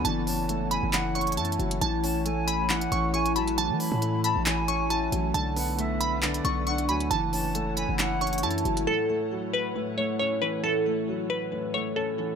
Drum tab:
HH |x-----------o-----------x-----------x-----------x-----------x--x--x--x--x---x---x---x-----x-----|x-----------o-----------x-----------x-----------x-----x-----x-----------x-----x-----x-----x-----|x-----------o-----------x-----------x-----------x-----------x-----------x-----------x-----------|x-----------o-----------x-----------x-----------x-----x-----x-----------x-----x-----x-----x-----|
CP |------------------------------------------------x-----------------------------------------------|------------------------------------------------x-----------------------------------------------|------------------------------------------------x-----------------------------------------------|------------------------------------------------x-----------------------------------------------|

HH |x-----------o-----------x-----------x-----------x-----------x--x--x--x--x---x---x---x-----x-----|------------------------------------------------------------------------------------------------|------------------------------------------------------------------------------------------------|
CP |------------------------------------------------x-----------------------------------------------|------------------------------------------------------------------------------------------------|------------------------------------------------------------------------------------------------|